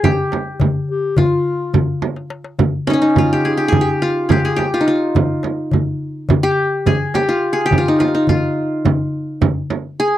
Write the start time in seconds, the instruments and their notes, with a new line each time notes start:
Already playing: qanun C5
0.03 qanun G4, clarinet G4, darbuka dum, frame drum
0.32 darbuka tek, frame drum
0.60 darbuka dum, frame drum
0.89 clarinet G4, darbuka ka
1.17 clarinet F4, qanun F4, darbuka dum, frame drum
1.74 darbuka dum, frame drum
2.02 darbuka tek, frame drum
2.16 darbuka ka
2.30 darbuka tek
2.44 darbuka ka
2.59 darbuka dum, frame drum
2.87 qanun C#4 D#4, darbuka tek, frame drum
2.93 qanun C#4
3.02 qanun D#4
3.16 qanun F4, darbuka dum, frame drum
3.33 qanun G4
3.45 qanun G#4
3.57 qanun G4
3.68 qanun G#4
3.72 frame drum, darbuka dum
3.81 qanun G4
4.02 qanun F4
4.29 qanun G4 G#4, darbuka dum, frame drum
4.45 qanun G#4
4.56 qanun G4, darbuka tek, frame drum
4.74 qanun F4
4.81 qanun D#4
4.88 qanun F4
5.15 darbuka dum, frame drum
5.43 darbuka tek, frame drum
5.71 darbuka dum, frame drum
6.29 darbuka dum, frame drum
6.43 qanun G4
6.86 qanun G#4, darbuka dum, frame drum
7.14 qanun G4, darbuka tek, frame drum
7.29 qanun F4
7.53 qanun G#4
7.66 qanun G4
7.71 darbuka dum, frame drum
7.78 qanun F4
7.88 qanun D#4
7.99 qanun F4, darbuka tek, frame drum
8.15 qanun D#4
8.27 qanun F4, darbuka dum, frame drum
8.85 darbuka dum, frame drum
9.41 darbuka dum, frame drum
9.70 darbuka tek, frame drum
10.00 qanun G#4